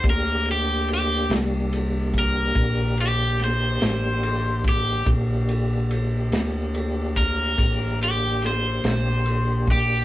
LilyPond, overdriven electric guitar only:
\new Staff \with { instrumentName = "Overdriven electric guitar" } { \time 12/8 \key g \minor \tempo 4. = 48 bes'8 g'8 g'8 r4 bes'4 g'8 c''4. g'8 | r2 r8 bes'4 g'8 c''4. g'8 | }